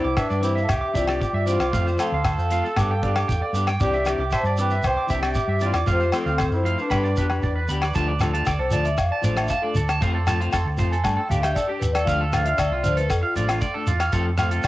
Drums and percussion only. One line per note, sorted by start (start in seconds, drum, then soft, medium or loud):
0.17 kick medium
0.17 cross-stick medium
0.17 low agogo medium
0.17 shekere medium
0.30 shekere soft
0.43 closed hi-hat soft
0.43 shekere medium
0.57 shekere soft
0.69 kick medium
0.69 cross-stick medium
0.69 low agogo medium
0.69 shekere loud
0.95 kick medium
0.95 closed hi-hat soft
0.95 shekere medium
1.08 cross-stick medium
1.08 low agogo medium
1.22 kick medium
1.22 shekere medium
1.47 closed hi-hat soft
1.47 shekere medium
1.60 cross-stick medium
1.60 low agogo medium
1.60 shekere soft
1.73 kick medium
1.73 shekere medium
1.87 shekere soft
1.99 cross-stick medium
1.99 closed hi-hat medium
1.99 low agogo medium
1.99 shekere medium
2.25 kick medium
2.25 cross-stick medium
2.25 low agogo medium
2.25 shekere medium
2.39 shekere soft
2.50 closed hi-hat soft
2.50 shekere medium
2.65 shekere soft
2.76 kick medium
2.76 cross-stick medium
2.76 low agogo medium
2.76 shekere medium
3.03 kick medium
3.03 closed hi-hat soft
3.16 cross-stick medium
3.16 low agogo medium
3.29 kick medium
3.29 shekere medium
3.55 closed hi-hat medium
3.55 shekere medium
3.67 cross-stick medium
3.67 low agogo medium
3.67 shekere soft
3.80 kick medium
3.80 shekere medium
3.93 shekere soft
4.06 cross-stick medium
4.06 closed hi-hat medium
4.06 low agogo medium
4.06 shekere medium
4.31 kick medium
4.31 cross-stick medium
4.31 low agogo medium
4.31 shekere medium
4.45 shekere soft
4.57 closed hi-hat soft
4.57 shekere medium
4.70 shekere soft
4.83 kick medium
4.83 cross-stick medium
4.83 low agogo medium
4.83 shekere medium
5.09 kick medium
5.09 closed hi-hat soft
5.09 shekere medium
5.23 cross-stick medium
5.23 low agogo medium
5.35 kick medium
5.35 shekere medium
5.60 closed hi-hat soft
5.60 shekere soft
5.73 cross-stick medium
5.73 low agogo medium
5.73 shekere soft
5.87 kick medium
5.87 shekere medium
6.00 shekere soft
6.12 cross-stick medium
6.12 closed hi-hat medium
6.12 low agogo medium
6.12 shekere medium
6.26 shekere soft
6.38 kick medium
6.38 cross-stick medium
6.38 low agogo medium
6.38 shekere medium
6.51 shekere soft
6.66 closed hi-hat soft
6.78 shekere soft
6.90 kick medium
6.90 cross-stick medium
6.90 low agogo medium
6.90 shekere medium
7.04 shekere soft
7.17 kick medium
7.17 closed hi-hat soft
7.17 shekere medium
7.30 cross-stick medium
7.30 low agogo medium
7.30 shekere soft
7.42 kick medium
7.42 shekere medium
7.68 closed hi-hat medium
7.68 shekere medium
7.82 cross-stick medium
7.82 low agogo medium
7.82 shekere soft
7.94 kick medium
7.94 closed hi-hat medium
7.94 shekere medium
8.19 cross-stick medium
8.19 closed hi-hat medium
8.19 low agogo medium
8.19 shekere medium
8.34 closed hi-hat soft
8.45 kick medium
8.45 cross-stick medium
8.45 closed hi-hat medium
8.45 low agogo medium
8.45 shekere medium
8.71 closed hi-hat soft
8.71 shekere loud
8.84 closed hi-hat soft
8.84 shekere soft
8.98 kick medium
8.98 cross-stick medium
8.98 closed hi-hat soft
8.98 low agogo medium
8.98 shekere medium
9.23 closed hi-hat soft
9.23 shekere loud
9.36 cross-stick medium
9.36 closed hi-hat soft
9.36 low agogo medium
9.48 kick medium
9.48 closed hi-hat soft
9.48 shekere medium
9.74 closed hi-hat soft
9.74 shekere loud
9.88 cross-stick medium
9.88 closed hi-hat soft
9.88 low agogo medium
9.88 shekere soft
10.01 kick medium
10.01 closed hi-hat soft
10.01 shekere medium
10.27 cross-stick medium
10.27 closed hi-hat medium
10.27 low agogo medium
10.27 shekere loud
10.41 closed hi-hat soft
10.52 kick medium
10.52 cross-stick medium
10.52 closed hi-hat medium
10.52 low agogo medium
10.52 shekere medium
10.78 kick medium
10.78 closed hi-hat soft
10.78 shekere loud
10.92 closed hi-hat soft
10.92 shekere soft
11.04 kick medium
11.04 cross-stick medium
11.04 closed hi-hat soft
11.04 low agogo medium
11.04 shekere medium
11.31 closed hi-hat medium
11.31 shekere loud
11.43 cross-stick medium
11.43 closed hi-hat medium
11.43 low agogo medium
11.43 shekere soft
11.56 kick medium
11.56 closed hi-hat medium
11.56 shekere medium
11.82 closed hi-hat medium
11.82 shekere medium
11.95 cross-stick medium
11.95 closed hi-hat medium
11.95 low agogo medium
11.95 shekere soft
12.07 kick medium
12.07 closed hi-hat medium
12.07 shekere medium
12.33 cross-stick medium
12.33 closed hi-hat medium
12.33 low agogo medium
12.33 shekere medium
12.46 closed hi-hat medium
12.58 kick medium
12.58 cross-stick medium
12.58 closed hi-hat medium
12.58 low agogo medium
12.58 shekere medium
12.84 closed hi-hat medium
12.84 shekere medium
12.97 closed hi-hat soft
12.97 shekere soft
13.10 kick medium
13.10 cross-stick medium
13.10 closed hi-hat soft
13.10 low agogo medium
13.10 shekere medium
13.36 closed hi-hat medium
13.36 shekere medium
13.48 cross-stick medium
13.48 closed hi-hat soft
13.48 low agogo medium
13.48 shekere soft
13.60 kick medium
13.60 closed hi-hat soft
13.60 shekere medium
13.87 closed hi-hat soft
13.87 shekere medium
14.00 cross-stick medium
14.00 closed hi-hat medium
14.00 low agogo medium
14.00 shekere soft
14.12 kick loud
14.12 closed hi-hat soft
14.12 shekere medium
14.38 cross-stick medium
14.38 closed hi-hat soft
14.38 low agogo medium
14.38 shekere medium
14.51 closed hi-hat soft
14.51 shekere soft
14.63 cross-stick medium
14.63 closed hi-hat soft
14.63 shekere medium